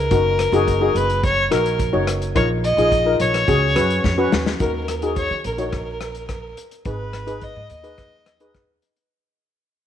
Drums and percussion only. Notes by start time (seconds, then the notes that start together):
0.11 kick, closed hi-hat
0.39 cross-stick, closed hi-hat
0.53 closed hi-hat
0.68 kick, closed hi-hat
0.96 closed hi-hat
1.10 closed hi-hat
1.24 kick, closed hi-hat
1.52 cross-stick, closed hi-hat
1.66 closed hi-hat
1.79 kick, closed hi-hat
2.07 cross-stick, closed hi-hat
2.22 closed hi-hat
2.36 kick, closed hi-hat
2.64 closed hi-hat
2.78 closed hi-hat
2.92 kick, closed hi-hat
3.20 closed hi-hat
3.34 cross-stick, closed hi-hat
3.48 kick, closed hi-hat
3.76 cross-stick, closed hi-hat
3.90 closed hi-hat
4.04 kick, snare
4.32 snare
4.46 snare
4.60 kick, closed hi-hat
4.88 cross-stick, closed hi-hat
5.02 closed hi-hat
5.16 kick, closed hi-hat
5.44 closed hi-hat
5.58 closed hi-hat
5.72 kick, cross-stick, closed hi-hat
6.01 cross-stick, closed hi-hat
6.15 closed hi-hat
6.29 kick, cross-stick, closed hi-hat
6.57 closed hi-hat
6.71 closed hi-hat
6.85 kick, closed hi-hat
7.13 cross-stick, closed hi-hat
7.27 closed hi-hat
7.41 kick, closed hi-hat
7.70 closed hi-hat
7.84 closed hi-hat
7.98 kick, cross-stick, closed hi-hat
8.26 cross-stick, closed hi-hat
8.40 closed hi-hat
8.54 kick, cross-stick, closed hi-hat
8.82 closed hi-hat
8.96 closed hi-hat